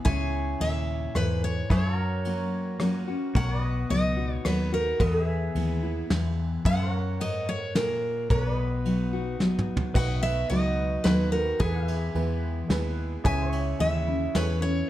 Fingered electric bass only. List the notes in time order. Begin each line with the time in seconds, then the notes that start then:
0.06 C#2
0.60 D#2
1.15 E2
1.70 F#2
3.35 B1
3.90 C#2
4.45 D#2
5.00 E2
5.55 D#2
6.10 E2
6.65 F#2
8.30 B1
9.95 B1
10.50 C#2
11.05 D#2
11.60 E2
12.15 E2
12.69 D#2
13.25 C#2
13.80 D#2
14.35 E2